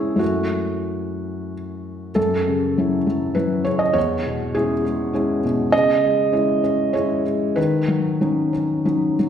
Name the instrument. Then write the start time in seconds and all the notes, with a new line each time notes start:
felt piano
Already playing: C#3 G#3 C#4 E4 G#4 C#5 G#5 C#6 E6
0.16 F#2 A3 C#4 E4 F#4
2.15 F#2 A4
2.48 C#3
2.78 F#3 C#4 E4
3.07 F#3
3.35 F#3 C#4 E4 B4
3.65 C#3 C#5
3.79 D#5
3.93 E2 C#5
4.26 B2
4.55 G#3 C#4 E4 G#4
4.85 G#3
5.14 G#3 C#4 E4
5.45 B2
5.72 C#3 D#5
6.04 G#3
6.32 G#3 C#4 E4
6.64 C#4
6.93 G#3 C#4 E4 C#5
7.25 G#3
7.56 D#3 B4
7.88 F#3
8.21 F#3 C#4 D#4
8.53 C#4
8.85 F#3 C#4 D#4
9.19 F#3